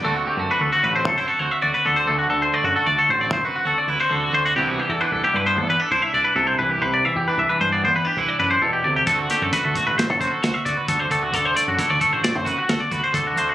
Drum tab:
HH |----------|----------|----------|----------|
SD |----------|----------|----------|----------|
BD |----------|----------|----------|----------|

HH |xxxxxxxxxx|xxxxxxxxxx|
SD |-oooooooo-|--o-o-oo--|
BD |o-oo-o-ooo|o-oo-o-oo-|